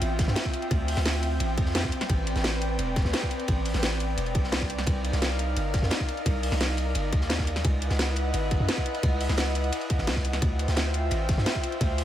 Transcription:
Already playing: analog synth pad C4 F4 E5 G5
0.02 808-style bass A1, closed hi-hat, ride
0.19 kick, snare, closed hi-hat, ride
0.28 808-style bass G2, snare
0.36 snare, closed hi-hat, ride
0.45 kick
0.54 closed hi-hat, ride
0.62 closed hi-hat
0.71 808-style bass D2, kick, closed hi-hat, ride
0.88 closed hi-hat, open hi-hat
0.96 808-style bass D2, snare, closed hi-hat
1.06 snare, closed hi-hat, ride
1.23 closed hi-hat, ride
1.40 808-style bass A1, closed hi-hat, ride
1.57 808-style bass F2, kick, closed hi-hat, ride
1.66 snare
1.75 snare, closed hi-hat, ride
1.84 kick, snare
1.92 analog synth pad B4 D5, closed hi-hat, ride
2.01 snare, closed hi-hat
2.09 808-style bass A1, kick, closed hi-hat, ride
2.27 closed hi-hat, ride
2.36 808-style bass A1, snare, closed hi-hat
2.44 snare, closed hi-hat, ride
2.61 closed hi-hat, ride
2.79 808-style bass E1, closed hi-hat, ride
2.96 kick, snare, closed hi-hat, ride
3.05 808-style bass D2, snare
3.13 snare, closed hi-hat, ride
3.22 kick
3.31 closed hi-hat, ride
3.40 closed hi-hat
3.48 808-style bass A1, kick, closed hi-hat, ride
3.65 closed hi-hat, open hi-hat
3.74 808-style bass A1, snare, closed hi-hat
3.83 snare, closed hi-hat, ride
4.00 closed hi-hat, ride
4.18 808-style bass E1, closed hi-hat, ride
4.26 closed hi-hat
4.35 808-style bass C2, kick, closed hi-hat, ride
4.44 snare
4.52 snare, closed hi-hat, ride
4.60 kick, snare
4.70 closed hi-hat, ride
4.78 snare, closed hi-hat
4.86 808-style bass C2, analog synth pad D#4 A#4 F5, kick, closed hi-hat, ride
5.05 closed hi-hat, ride
5.13 808-style bass C2, snare, closed hi-hat
5.22 snare, closed hi-hat, ride
5.39 closed hi-hat, ride
5.56 808-style bass G1, closed hi-hat, ride
5.73 kick, snare, closed hi-hat, ride
5.82 808-style bass F2, snare
5.90 snare, closed hi-hat, ride
6.00 kick
6.08 closed hi-hat, ride
6.17 closed hi-hat
6.26 808-style bass C2, kick, closed hi-hat, ride
6.43 closed hi-hat, open hi-hat
6.52 808-style bass C2, snare, closed hi-hat
6.61 snare, closed hi-hat, ride
6.77 closed hi-hat, ride
6.95 808-style bass G1, closed hi-hat, ride
7.12 808-style bass D#2, kick, closed hi-hat, ride
7.21 snare
7.29 snare, closed hi-hat, ride
7.38 kick, snare
7.47 closed hi-hat, ride
7.56 snare, closed hi-hat
7.65 808-style bass C#2, analog synth pad E4 B4 D#5 F#5, kick, closed hi-hat, ride
7.82 closed hi-hat, ride
7.90 808-style bass C#2, snare, closed hi-hat
7.99 snare, closed hi-hat, ride
8.16 closed hi-hat, ride
8.34 808-style bass G#1, closed hi-hat, ride
8.51 kick, closed hi-hat, ride
8.60 808-style bass F#2
8.69 snare, closed hi-hat, ride
8.77 kick, ride
8.86 closed hi-hat
8.94 closed hi-hat, ride
9.03 808-style bass C#2, kick, closed hi-hat, ride
9.20 closed hi-hat, open hi-hat
9.29 808-style bass C#2, snare, closed hi-hat
9.37 snare, closed hi-hat, ride
9.55 closed hi-hat, ride
9.64 closed hi-hat
9.72 closed hi-hat, ride
9.81 closed hi-hat
9.90 kick, closed hi-hat, ride
9.98 808-style bass G#1, snare
10.07 808-style bass C#2, snare, closed hi-hat, ride
10.16 kick, snare
10.25 closed hi-hat, ride
10.32 snare, closed hi-hat
10.42 808-style bass D2, analog synth pad F4 C5 E5 G5, kick, closed hi-hat, ride
10.59 closed hi-hat, ride
10.68 808-style bass D2, snare, closed hi-hat
10.76 snare, closed hi-hat, ride
10.94 closed hi-hat, ride
11.11 808-style bass A1, closed hi-hat, ride
11.29 kick, snare, closed hi-hat, ride
11.38 808-style bass G2, snare
11.46 snare, closed hi-hat, ride
11.55 kick
11.63 closed hi-hat, ride
11.72 closed hi-hat
11.81 808-style bass D2, kick, closed hi-hat, ride
11.98 closed hi-hat, open hi-hat

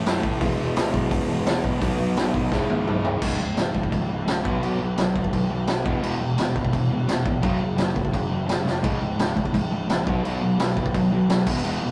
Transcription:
Already playing: overdriven electric guitar A2 E3 A3 C#4 E4 A4
0.05 picked electric bass F#2, distorted electric guitar A2 E3 A3, snare, open hi-hat
0.23 picked electric bass A1, kick
0.39 picked electric bass E1, overdriven electric guitar E2 B2 E3 G#3 B3 E4, kick, open hi-hat
0.59 picked electric bass E1
0.76 picked electric bass C#2, snare, open hi-hat
0.94 picked electric bass B1, kick
1.11 picked electric bass C#2, kick, open hi-hat
1.28 picked electric bass E1, distorted electric guitar E2 B2 E3
1.45 picked electric bass E1, distorted electric guitar E2 B2 E3, snare, open hi-hat
1.64 picked electric bass B1, kick
1.81 picked electric bass B1, overdriven electric guitar B2 F#3 B3 D#4 F#4 B4, kick, open hi-hat
1.99 picked electric bass B1
2.17 picked electric bass B1, snare, open hi-hat
2.34 picked electric bass B1, kick
2.51 picked electric bass C#1, overdriven electric guitar C#2 G#2 C#3 G#3 E4, kick, snare
2.70 picked electric bass C#1, high tom
2.87 picked electric bass B1, mid tom
3.04 picked electric bass C#1, floor tom
3.21 picked electric bass C#1, overdriven electric guitar C#2 G#2 C#3, kick, crash
3.38 picked electric bass C#1, overdriven electric guitar C#2 G#2
3.55 picked electric bass C#1, overdriven electric guitar C#2 G#2, snare, crash
3.73 picked electric bass C#1, overdriven electric guitar C#2 G#2, kick
3.83 kick
3.90 picked electric bass C#1, overdriven electric guitar C#2 G#2, kick, crash
4.08 picked electric bass C#1, overdriven electric guitar C#2 G#2
4.25 picked electric bass C#1, overdriven electric guitar C#2 G#2, snare, crash
4.43 picked electric bass B1, overdriven electric guitar B2 F#3 B3, kick
4.61 picked electric bass B1, overdriven electric guitar B2 F#3 B3, crash
4.78 picked electric bass B1, overdriven electric guitar B2 F#3
4.96 picked electric bass B1, overdriven electric guitar B2 F#3, snare, crash
5.14 picked electric bass B1, overdriven electric guitar B2 F#3, kick
5.24 kick
5.33 picked electric bass B1, overdriven electric guitar B2 F#3, kick, crash
5.49 picked electric bass B1, overdriven electric guitar B2 F#3
5.67 picked electric bass B1, overdriven electric guitar B2 F#3, snare, crash
5.84 picked electric bass E1, overdriven electric guitar E2 B2 E3, kick
6.02 picked electric bass E1, overdriven electric guitar E2 B2 E3, crash
6.19 picked electric bass E1, overdriven electric guitar E2 B2
6.38 picked electric bass E1, overdriven electric guitar E2 B2, snare, crash
6.55 picked electric bass E1, overdriven electric guitar E2 B2, kick
6.65 kick
6.72 picked electric bass E1, overdriven electric guitar E2 B2, kick, crash
6.91 picked electric bass E1, overdriven electric guitar E2 B2
7.08 picked electric bass E1, overdriven electric guitar E2 B2, snare, crash
7.25 picked electric bass E1, overdriven electric guitar E2 B2, kick
7.42 picked electric bass F#1, overdriven electric guitar F#2 C#3 F#3, kick, crash
7.60 picked electric bass F#1, overdriven electric guitar F#2 C#3
7.77 picked electric bass F#1, overdriven electric guitar F#2 C#3, snare, crash
7.94 picked electric bass F#1, overdriven electric guitar F#2 C#3, kick
8.05 kick
8.12 picked electric bass F#1, overdriven electric guitar F#2 C#3, kick, crash
8.29 picked electric bass F#1, overdriven electric guitar F#2 C#3
8.46 picked electric bass F#1, overdriven electric guitar F#2 C#3, snare, crash
8.64 picked electric bass F#1, overdriven electric guitar F#2 C#3, snare
8.82 picked electric bass C#1, overdriven electric guitar C#2 G#2 C#3, kick, crash
9.00 picked electric bass C#1, overdriven electric guitar C#2 G#2
9.17 picked electric bass C#1, overdriven electric guitar C#2 G#2, snare, crash
9.34 picked electric bass C#1, overdriven electric guitar C#2 G#2, kick
9.45 kick
9.52 picked electric bass C#1, overdriven electric guitar C#2 G#2, kick, crash
9.71 picked electric bass C#1, overdriven electric guitar C#2 G#2
9.88 picked electric bass A#1, overdriven electric guitar C#2 G#2, snare, crash
10.05 picked electric bass B1, overdriven electric guitar B2 F#3 B3, kick
10.23 picked electric bass B1, overdriven electric guitar B2 F#3 B3, crash
10.41 picked electric bass B1, overdriven electric guitar B2 F#3
10.58 picked electric bass B1, overdriven electric guitar B2 F#3, snare, crash
10.77 picked electric bass B1, overdriven electric guitar B2 F#3, kick
10.86 kick
10.94 picked electric bass B1, overdriven electric guitar B2 F#3, kick, crash
11.11 picked electric bass B1, overdriven electric guitar B2 F#3
11.29 picked electric bass B1, overdriven electric guitar B2 F#3, snare, crash
11.46 picked electric bass E1, overdriven electric guitar E2 B2 E3, kick, crash
11.64 picked electric bass E1, overdriven electric guitar E2 B2 E3, crash
11.82 picked electric bass E1, overdriven electric guitar E2 B2

